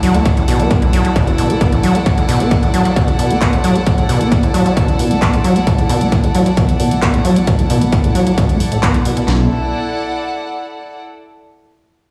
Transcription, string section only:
Already playing: E4 A4 D5 F#5
9.28 E4
9.35 A4
9.42 D5
9.48 F#5

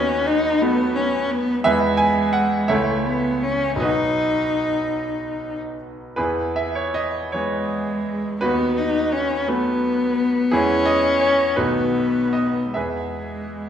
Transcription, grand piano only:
Already playing: D#2 D#4 F#4 B4
0.61 F#3 A3 B3
1.64 E2 E3 G#3 B3 G#4 B4 E5
1.97 G#5
2.33 F#5
2.68 C#2 E3 A3 A4 C#5 E5
3.76 B1 F#3 B3 D#5
3.81 F#4 B4
6.16 E2 E4 G#4 B4
6.56 E5
6.75 C#5
6.94 D#5
7.32 E3 G#3 B3 C#5
8.41 D#2 D#4 F#4 B4
9.47 F#3 A3 B3
10.51 E2 E3 G#3 B3 E4 G#4
10.86 D#5
11.21 C#5
11.56 B1 D#3 A3 B3 D#4 F#4 B4
12.33 D#5
12.74 E2 G#4 B4 E5

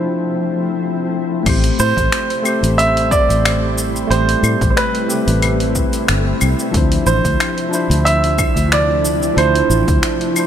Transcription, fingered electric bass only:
1.46 A1
1.80 A2
1.97 A1
2.63 A1
3.29 A1
4.10 A1
4.43 A2
4.62 A1
5.27 A1
6.09 G1
6.42 C2
6.74 D2
7.06 A1
7.25 D2
7.90 D2
8.56 D2
9.37 D2
9.70 A1
9.88 D2

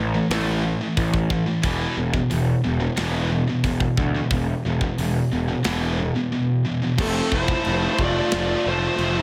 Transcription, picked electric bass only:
Already playing: A1
0.30 A1
0.97 A1
1.64 E1
1.97 E1
2.32 E1
2.67 E1
2.98 E1
3.64 E1
3.97 D2
4.31 E1
4.66 E1
4.99 E1
5.33 E1
5.66 E1
6.98 F1
7.32 F1
7.67 F1
7.99 F1
8.34 F1
8.66 F1
8.99 F1

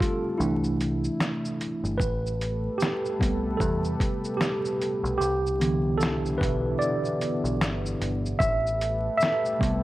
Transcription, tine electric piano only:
Already playing: G3 A3 D4 G4 A4
0.00 F4
0.38 E3 A3 D4 E4
1.98 B4
2.78 G4
3.19 C3 G3 B3
3.57 A4
4.37 G4
5.18 G4
5.60 D3 E3 B3
5.98 A4
6.38 B4
6.79 D5
8.39 E5
9.18 E5
9.59 C3 G3 B3

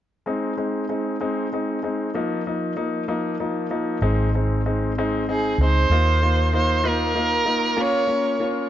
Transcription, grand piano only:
0.26 G#3 C4 D#4
0.57 G#3 C4 D#4
0.89 G#3 C4 D#4
1.21 G#3 C4 D#4
1.53 G#3 C4 D#4
1.83 G#3 C4 D#4
2.14 F3 A#3 D#4
2.47 F3 A#3 D#4
2.76 F3 A#3 D#4
3.08 F3 A#3 D#4
3.40 F3 A#3 D#4
3.70 F3 A#3 D#4
4.02 G#3 C4 D#4
4.35 G#3 C4 D#4
4.66 G#3 C4 D#4
4.98 G#3 C4 D#4
5.28 G#3 C4 D#4
5.61 G#3 C4 D#4
5.91 A#3 D#4 F4
6.22 A#3 D#4 F4
6.53 A#3 D#4 F4
6.84 A#3 D#4 F4
7.15 A#3 D#4 F4
7.45 A#3 D#4 F4
7.77 A#3 C#4 F4
8.07 A#3 C#4 F4
8.40 A#3 C#4 F4

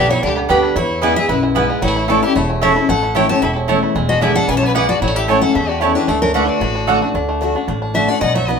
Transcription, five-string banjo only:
Already playing: G3 B3 D4
0.10 G4
0.23 D4
0.37 B3
0.49 G3
0.63 D4
0.76 E4
1.02 E4
1.16 G#3
1.29 E4
1.43 G#3
1.56 B3
1.70 G#3
1.82 G3
1.88 A3
1.96 E4
2.09 E3
2.23 E4
2.36 A3
2.50 C#4
2.62 A3
2.76 E4
2.89 A3
3.03 E4
3.16 A3
3.30 G4
3.43 E4
3.56 C#4
3.69 A3
3.83 E4
3.96 G#3
4.10 D4
4.22 D3
4.36 D4
4.49 G#3
4.63 B3
4.75 G#3
4.89 D4
5.02 G3
5.08 A3
5.16 E4
5.29 C#4
5.43 E3
5.55 A3
5.69 G4
5.82 C#4
5.96 G4
6.08 A3
6.22 D4
6.35 A3
6.49 D4
6.62 D4
6.75 D4
6.88 A3
7.02 D4
7.15 D4
7.29 A3
7.42 D4
7.56 D4
7.68 D4
7.82 D4
7.95 A3
8.08 D4
8.21 A3
8.27 B3
8.35 D#4
8.48 B3

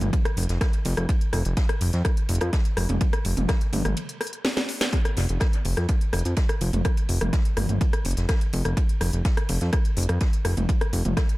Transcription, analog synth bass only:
0.01 G1
0.37 F1
0.49 F1
0.85 F1
0.97 F1
1.33 F1
1.45 F1
1.81 F1
1.94 F2
2.29 F1
2.42 F2
2.77 F1
2.89 F1
3.25 F1
3.37 F1
3.73 G1
3.85 G1
5.17 F1
5.30 F1
5.65 F1
5.77 F2
6.13 F1
6.25 F2
6.61 F1
6.73 F1
7.09 F1
7.21 F1
7.57 G1
7.69 G1
8.05 F1
8.17 F1
8.53 F1
8.65 F1
9.01 F1
9.13 F1
9.49 F1
9.62 F2
9.97 F1
10.09 F2
10.45 F1
10.57 F1
10.93 F1
11.05 F1

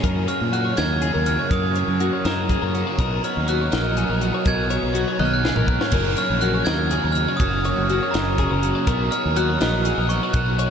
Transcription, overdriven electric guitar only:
0.02 F#2 C#3 F#3 A#3 C#4
0.26 F#3 A#3 C#4
0.50 C#3 F#3 A#3 C#4
0.75 F#3 A#3 C#4
1.01 C#3 F#3 A#3 C#4
1.25 F#3 A#3 C#4
1.49 F#2 C#3 F#3 A#3 C#4
1.74 F#3 A#3 C#4
1.98 C#3 F#3 A#3 C#4
2.23 F#3 A#3 C#4
2.48 C#3 F#3 A#3 C#4
2.73 F#3 A#3 C#4
2.97 B2 F#3 B3 D#4
3.22 F#3 B3 D#4
3.45 B2 F#3 B3 D#4
3.71 F#3 B3 D#4
3.95 B2 F#3 B3 D#4
4.20 F#3 B3 D#4
4.44 B2 F#3 B3 D#4
4.69 F#3 B3 D#4
4.93 B2 F#3 B3 D#4
5.18 F#3 B3 D#4
5.43 B2 F#3 B3 D#4
5.67 F#3 B3 D#4
5.91 F#2 C#3 F#3 A#3 C#4
6.16 F#3 A#3 C#4
6.41 C#3 F#3 A#3 C#4
6.65 F#3 A#3 C#4
6.89 C#3 F#3 A#3 C#4
7.14 F#3 A#3 C#4
7.39 F#2 C#3 F#3 A#3 C#4
7.63 F#3 A#3 C#4
7.88 C#3 F#3 A#3 C#4
8.12 F#3 A#3 C#4
8.37 C#3 F#3 A#3 C#4
8.61 F#3 A#3 C#4
8.86 B2 F#3 B3 D#4
9.11 F#3 B3 D#4
9.35 B2 F#3 B3 D#4
9.60 F#3 B3 D#4
9.84 B2 F#3 B3 D#4
10.09 F#3 B3 D#4
10.33 B2 F#3 B3 D#4
10.58 F#3 B3 D#4

